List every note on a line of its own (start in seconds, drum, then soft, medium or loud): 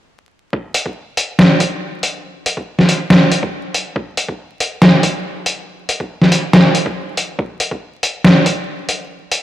0.53 kick loud
0.74 closed hi-hat medium
0.86 kick medium
1.17 closed hi-hat medium
1.39 snare loud
1.60 kick medium
1.60 closed hi-hat medium
2.03 closed hi-hat medium
2.46 closed hi-hat medium
2.57 kick medium
2.79 snare soft
2.89 closed hi-hat medium
3.10 snare loud
3.32 closed hi-hat medium
3.43 kick loud
3.74 closed hi-hat medium
3.96 kick loud
4.17 closed hi-hat medium
4.28 kick medium
4.60 closed hi-hat medium
4.82 snare loud
5.03 kick loud
5.03 closed hi-hat medium
5.46 closed hi-hat medium
5.89 closed hi-hat medium
6.00 kick medium
6.22 snare soft
6.32 closed hi-hat medium
6.53 snare loud
6.75 closed hi-hat medium
6.86 kick loud
7.17 closed hi-hat medium
7.39 kick loud
7.60 closed hi-hat medium
7.71 kick medium
8.03 closed hi-hat medium
8.24 snare loud
8.46 kick medium
8.46 closed hi-hat medium
8.89 closed hi-hat medium
9.32 closed hi-hat medium